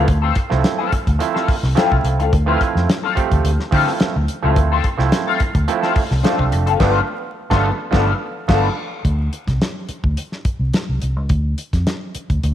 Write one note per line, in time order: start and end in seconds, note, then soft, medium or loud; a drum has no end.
0.07 0.31 D2 loud
0.07 muted clean electric guitar stroke soft
0.07 kick loud
0.07 closed hi-hat medium
0.22 0.35 C4 medium
0.22 0.35 F4 medium
0.22 0.36 A4 medium
0.35 muted clean electric guitar stroke soft
0.35 kick medium
0.35 closed hi-hat medium
0.50 0.62 C2 medium
0.50 0.93 F3 medium
0.50 0.94 A3 medium
0.50 0.94 C4 medium
0.50 0.94 E4 medium
0.50 muted clean electric guitar stroke soft
0.50 snare soft
0.64 muted clean electric guitar stroke soft
0.64 snare loud
0.64 closed hi-hat medium
0.78 0.91 C4 medium
0.78 0.91 F4 medium
0.78 0.92 A4 medium
0.92 muted clean electric guitar stroke soft
0.92 muted fingered electric bass stroke soft
0.92 kick medium
0.92 closed hi-hat medium
1.07 1.18 D2 medium
1.07 muted clean electric guitar stroke soft
1.07 kick medium
1.07 closed hi-hat medium
1.19 1.55 F3 medium
1.19 1.55 A3 medium
1.19 1.56 C4 medium
1.19 1.56 E4 loud
1.19 muted clean electric guitar stroke soft
1.19 closed hi-hat medium
1.34 1.47 C4 medium
1.34 1.48 F4 medium
1.34 1.48 A4 medium
1.34 snare soft
1.48 muted clean electric guitar stroke soft
1.48 muted fingered electric bass stroke soft
1.48 kick medium
1.48 open hi-hat medium
1.63 1.74 C2 medium
1.63 muted clean electric guitar stroke soft
1.63 snare soft
1.75 2.20 F3 medium
1.75 2.20 A3 medium
1.75 2.21 C4 medium
1.75 1.95 C4 medium
1.75 2.21 E4 loud
1.75 1.95 F4 medium
1.75 1.96 A4 medium
1.75 snare loud
1.75 closed hi-hat medium
1.92 2.02 C2 medium
1.92 kick medium
2.04 2.19 C2 medium
2.04 muted clean electric guitar stroke soft
2.04 closed hi-hat medium
2.19 2.30 C#2 medium
2.19 2.32 C4 medium
2.19 2.32 F4 medium
2.19 2.33 A4 medium
2.19 closed hi-hat soft
2.33 2.55 D2 loud
2.33 muted clean electric guitar stroke soft
2.33 kick loud
2.33 closed hi-hat medium
2.46 2.89 F3 loud
2.46 2.90 A3 medium
2.46 2.90 C4 medium
2.46 2.60 C4 medium
2.46 2.90 E4 loud
2.46 2.60 F4 medium
2.46 2.61 B4 medium
2.61 muted clean electric guitar stroke soft
2.61 kick medium
2.61 closed hi-hat medium
2.75 2.86 F2 medium
2.75 muted clean electric guitar stroke soft
2.75 snare soft
2.89 muted clean electric guitar stroke soft
2.89 snare loud
2.89 closed hi-hat loud
3.03 3.17 C4 medium
3.03 3.17 F4 medium
3.03 3.18 A4 medium
3.15 3.51 F3 medium
3.15 3.51 A3 medium
3.15 3.52 C4 medium
3.15 3.52 G4 medium
3.15 muted fingered electric bass stroke soft
3.15 muted clean electric guitar stroke soft
3.15 kick medium
3.15 closed hi-hat medium
3.32 3.42 D2 medium
3.32 muted clean electric guitar stroke soft
3.32 kick medium
3.32 closed hi-hat soft
3.44 3.56 D2 loud
3.44 closed hi-hat medium
3.60 muted clean electric guitar stroke medium
3.60 snare soft
3.71 3.84 D3 loud
3.71 4.16 F3 medium
3.71 4.16 A3 medium
3.71 4.17 C4 medium
3.71 3.91 C4 medium
3.71 4.17 E4 loud
3.71 3.89 F4 loud
3.71 3.87 A4 loud
3.71 kick loud
3.71 open hi-hat medium
3.88 muted clean electric guitar stroke soft
3.88 snare soft
4.00 muted clean electric guitar stroke soft
4.00 muted fingered electric bass stroke soft
4.00 snare loud
4.00 closed hi-hat medium
4.16 4.26 D2 medium
4.16 muted clean electric guitar stroke soft
4.28 closed hi-hat medium
4.42 4.57 C#2 loud
4.42 4.77 F3 medium
4.42 4.77 A3 medium
4.42 4.78 C4 medium
4.42 4.56 C4 medium
4.42 4.78 E4 medium
4.42 4.57 F4 medium
4.42 4.57 A4 medium
4.56 4.79 D2 loud
4.56 muted clean electric guitar stroke soft
4.56 kick loud
4.56 closed hi-hat medium
4.72 4.84 C4 medium
4.72 4.85 F4 medium
4.72 4.85 A4 loud
4.84 muted clean electric guitar stroke soft
4.84 kick medium
4.84 closed hi-hat medium
4.97 5.09 C2 medium
4.97 5.41 F3 medium
4.97 5.41 A3 medium
4.97 5.42 C4 medium
4.97 5.42 E4 loud
4.97 muted clean electric guitar stroke soft
4.97 snare soft
5.12 muted clean electric guitar stroke soft
5.12 snare loud
5.12 closed hi-hat loud
5.27 5.39 C4 medium
5.27 5.40 F4 medium
5.27 5.41 A4 medium
5.40 muted clean electric guitar stroke soft
5.40 muted fingered electric bass stroke soft
5.40 kick medium
5.40 closed hi-hat medium
5.55 5.66 D2 medium
5.55 muted clean electric guitar stroke soft
5.55 kick medium
5.55 closed hi-hat medium
5.68 6.03 F3 loud
5.68 6.04 A3 medium
5.68 6.04 C4 medium
5.68 6.04 E4 loud
5.68 muted clean electric guitar stroke soft
5.68 closed hi-hat medium
5.83 5.95 C4 medium
5.83 5.96 F4 medium
5.83 5.96 A4 medium
5.83 snare soft
5.96 muted fingered electric bass stroke soft
5.96 muted clean electric guitar stroke soft
5.96 kick loud
5.96 open hi-hat medium
6.11 6.22 C2 medium
6.11 muted clean electric guitar stroke soft
6.11 snare soft
6.23 6.69 F3 medium
6.23 6.69 A3 medium
6.23 6.42 C4 medium
6.23 6.69 C4 medium
6.23 6.69 D4 medium
6.23 6.43 F4 medium
6.23 6.43 A4 medium
6.23 snare loud
6.23 closed hi-hat medium
6.39 6.50 C2 medium
6.39 kick medium
6.52 6.67 F1 loud
6.52 muted clean electric guitar stroke soft
6.52 closed hi-hat medium
6.66 6.79 F#1 loud
6.66 6.81 C4 medium
6.66 6.79 F4 medium
6.66 6.79 A4 medium
6.66 closed hi-hat soft
6.80 7.00 G1 loud
6.80 6.99 F3 loud
6.80 7.00 A3 loud
6.80 7.00 B3 loud
6.80 7.01 B3 loud
6.80 7.00 D4 loud
6.80 7.00 F4 loud
6.80 6.99 B4 loud
6.80 kick loud
6.80 snare loud
6.80 crash medium
7.50 7.70 G1 loud
7.50 7.69 F3 loud
7.50 7.70 A3 loud
7.50 7.70 B3 loud
7.50 7.71 B3 loud
7.50 7.70 D4 loud
7.50 7.70 F4 medium
7.50 7.70 A4 loud
7.50 kick loud
7.50 snare loud
7.91 8.12 G1 loud
7.91 8.11 F3 loud
7.91 8.11 A3 medium
7.91 8.12 B3 loud
7.91 8.12 D4 loud
7.91 8.12 F4 loud
7.91 8.13 A4 loud
7.91 kick loud
7.91 snare loud
8.48 8.68 G1 medium
8.48 8.68 F3 loud
8.48 8.68 A3 loud
8.48 8.68 B3 loud
8.48 8.68 B3 medium
8.48 8.69 D4 medium
8.48 8.68 F4 medium
8.48 8.69 A4 loud
8.48 kick loud
8.48 snare loud
8.48 crash medium
9.05 9.28 D2 loud
9.05 kick loud
9.05 closed hi-hat medium
9.33 closed hi-hat medium
9.47 9.58 C2 medium
9.47 kick medium
9.47 snare soft
9.47 closed hi-hat soft
9.62 snare medium
9.62 closed hi-hat medium
9.89 muted fingered electric bass stroke soft
9.89 closed hi-hat medium
10.04 10.15 D2 medium
10.04 kick medium
10.17 closed hi-hat medium
10.32 snare soft
10.45 muted fingered electric bass stroke soft
10.45 kick medium
10.45 closed hi-hat medium
10.59 10.71 C2 medium
10.74 snare loud
10.74 closed hi-hat medium
10.89 11.00 C2 medium
11.02 11.16 C2 medium
11.02 closed hi-hat medium
11.16 11.28 C#2 medium
11.29 11.53 D2 loud
11.29 kick loud
11.29 closed hi-hat medium
11.58 closed hi-hat medium
11.73 11.84 F2 medium
11.73 kick medium
11.73 snare soft
11.73 closed hi-hat medium
11.87 snare medium
11.87 closed hi-hat loud
12.15 muted fingered electric bass stroke soft
12.15 closed hi-hat medium
12.30 12.41 D2 medium
12.30 kick medium
12.30 closed hi-hat soft
12.43 12.54 D2 loud
12.43 closed hi-hat medium